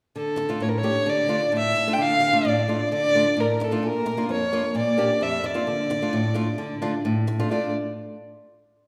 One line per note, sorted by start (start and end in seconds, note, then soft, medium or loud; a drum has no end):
0.16 0.49 D3 medium
0.16 0.64 A4 medium
0.36 muted nylon-string guitar stroke medium
0.49 0.61 A3 medium
0.49 0.60 D4 medium
0.49 0.61 F4 medium
0.60 0.95 A2 medium
0.60 0.71 C#5 medium
0.69 0.80 A#4 medium
0.78 1.11 C#5 medium
0.83 0.95 A3 medium
0.83 0.95 D4 medium
0.83 0.95 G4 medium
1.06 1.41 D3 medium
1.06 1.54 D5 medium
1.28 1.41 A3 medium
1.28 1.41 D4 medium
1.28 1.41 F4 medium
1.52 1.86 A2 medium
1.58 1.95 E5 medium
1.75 muted nylon-string guitar stroke medium
1.87 1.99 A3 medium
1.87 1.99 D4 medium
1.87 1.99 F4 medium
1.93 2.03 G5 medium
1.98 2.33 D3 medium
1.98 2.49 F5 loud
2.20 muted nylon-string guitar stroke medium
2.32 2.44 A3 medium
2.32 2.44 D4 soft
2.32 2.44 F4 medium
2.45 2.79 A2 medium
2.45 2.92 D5 medium
2.68 2.79 A3 medium
2.68 2.80 D4 medium
2.68 2.80 F4 medium
2.92 3.26 D3 medium
2.92 3.42 D5 loud
3.15 3.26 A3 medium
3.15 3.26 D4 medium
3.15 3.26 F4 medium
3.37 3.71 A2 medium
3.37 3.66 A#4 medium
3.60 muted nylon-string guitar stroke medium
3.64 3.89 A4 medium
3.71 3.83 A3 medium
3.71 3.83 D4 medium
3.71 3.83 F4 medium
3.83 4.17 A#2 soft
3.87 4.31 A#4 medium
4.06 muted nylon-string guitar stroke medium
4.17 4.29 A#3 medium
4.17 4.29 D4 soft
4.17 4.29 F4 medium
4.29 4.63 F2 medium
4.29 4.74 C#5 medium
4.53 4.64 A#3 medium
4.53 4.64 D4 medium
4.53 4.64 F4 medium
4.75 5.09 A#2 medium
4.75 5.24 D5 medium
4.98 5.09 A#3 medium
4.98 5.10 D4 medium
4.98 5.10 G4 medium
5.21 5.55 F2 medium
5.21 5.47 E5 medium
5.44 7.06 D5 medium
5.44 muted nylon-string guitar stroke medium
5.54 5.67 A#3 medium
5.54 5.67 D4 medium
5.54 5.67 F4 medium
5.67 6.01 D3 medium
5.90 muted nylon-string guitar stroke medium
6.02 6.13 A3 medium
6.02 6.14 D4 medium
6.02 6.14 F4 medium
6.13 6.47 A2 medium
6.34 6.47 A3 medium
6.34 6.47 D4 medium
6.34 6.47 F4 medium
6.58 6.93 D3 medium
6.82 6.94 A3 medium
6.82 6.93 D4 medium
6.82 6.94 F4 medium
7.05 7.39 A2 medium
7.27 muted nylon-string guitar stroke medium
7.39 7.50 A3 medium
7.39 7.51 D4 medium
7.39 7.50 F4 medium
7.50 7.72 A3 medium
7.50 7.73 D4 medium
7.50 7.73 F4 medium
7.50 7.72 D5 medium